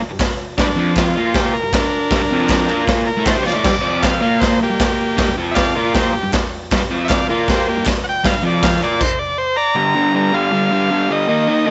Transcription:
0.02 muted overdriven electric guitar stroke
0.11 overdriven electric guitar G2
0.19 kick, snare, clap, open hi-hat
0.57 overdriven electric guitar G2 G3, transistor combo organ D4, kick, snare, open hi-hat
0.68 overdriven electric guitar G2
0.76 overdriven electric guitar F2 F3
0.96 transistor combo organ F4, kick, snare, clap, open hi-hat
1.16 overdriven electric guitar A#2 A#3
1.34 transistor combo organ G4, kick, snare, open hi-hat
1.53 transistor combo organ A#4, muted overdriven electric guitar stroke
1.63 overdriven electric guitar G2
1.73 transistor combo organ D4 A#4, kick, snare, clap, open hi-hat
2.11 overdriven electric guitar G2 G3, kick, snare, open hi-hat
2.21 overdriven electric guitar G2
2.31 overdriven electric guitar F2 F3
2.49 kick, snare, clap, open hi-hat
2.69 overdriven electric guitar A#2 A#3, clap
2.87 kick, snare, open hi-hat
3.07 transistor combo organ A#4, muted overdriven electric guitar stroke
3.17 overdriven electric guitar A2 A3
3.26 transistor combo organ C5, kick, snare, clap, open hi-hat
3.35 overdriven electric guitar G2 G3
3.43 overdriven electric guitar F3 F4, transistor combo organ C#5 D5
3.47 snare
3.54 overdriven electric guitar A2 A3
3.64 overdriven electric guitar G2 G3, kick, snare, crash
3.72 overdriven electric guitar G2
3.81 overdriven electric guitar F2 F3
4.03 transistor combo organ F5, kick, snare, clap, open hi-hat
4.21 overdriven electric guitar A#2 A#3, transistor combo organ F5
4.40 transistor combo organ C5, kick, snare, open hi-hat
4.61 transistor combo organ A#3 G4, muted overdriven electric guitar stroke
4.70 overdriven electric guitar G2
4.79 kick, snare, clap, open hi-hat
5.17 overdriven electric guitar G2 G3, kick, snare, open hi-hat
5.27 overdriven electric guitar G2
5.38 overdriven electric guitar F2 F3
5.51 transistor combo organ D5 E5 F5
5.55 kick, snare, clap, open hi-hat
5.75 overdriven electric guitar A#2 A#3, transistor combo organ F4 D5
5.93 transistor combo organ G4 C5, kick, snare, open hi-hat
6.12 transistor combo organ G4, muted overdriven electric guitar stroke
6.23 overdriven electric guitar G2
6.32 kick, snare, clap, open hi-hat
6.71 overdriven electric guitar G2 G3, kick, snare, open hi-hat
6.81 overdriven electric guitar G2
6.91 overdriven electric guitar F2 F3
7.05 transistor combo organ E5 F5
7.09 transistor combo organ D5, kick, snare, clap, open hi-hat
7.28 overdriven electric guitar A#2 A#3, transistor combo organ F4 D5
7.48 transistor combo organ G4 C5, kick, snare, open hi-hat
7.66 transistor combo organ A#3 G4, muted overdriven electric guitar stroke
7.77 overdriven electric guitar G2
7.86 kick, snare, clap, open hi-hat
8.04 transistor combo organ F#5
8.09 transistor combo organ G5
8.24 overdriven electric guitar G2 G3, transistor combo organ F5, kick, snare, open hi-hat
8.32 overdriven electric guitar G2
8.43 overdriven electric guitar F2 F3, transistor combo organ D5
8.62 transistor combo organ F5, kick, snare, clap, open hi-hat
8.80 overdriven electric guitar A#2 A#3, transistor combo organ D5, clap
9.00 transistor combo organ C5, kick, crash
9.19 transistor combo organ D5
9.38 transistor combo organ C5
9.56 transistor combo organ D5 A#5
9.76 overdriven electric guitar G2 D3 G3
9.95 overdriven electric guitar G2 D3 G3
10.14 overdriven electric guitar G2 D3 G3, transistor combo organ A#5
10.33 overdriven electric guitar G2 D3 G3, transistor combo organ F5
10.52 overdriven electric guitar G2 D3 G3
10.71 overdriven electric guitar G2 D3 G3
10.90 overdriven electric guitar G2 D3 G3
11.09 overdriven electric guitar G2 D3 G3, transistor combo organ D#5
11.28 overdriven electric guitar D#3 A#3 D#4
11.48 overdriven electric guitar D#3 A#3 D#4
11.67 overdriven electric guitar D#3 A#3

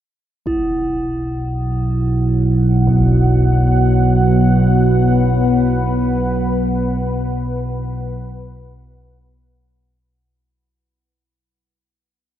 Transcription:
0.46 synth drone B1 B2, ambient pad F#3, singing bowl E4, impact
1.03 ambient pad B3
1.22 ambient pad F#5
2.87 impact
3.94 ambient pad B4

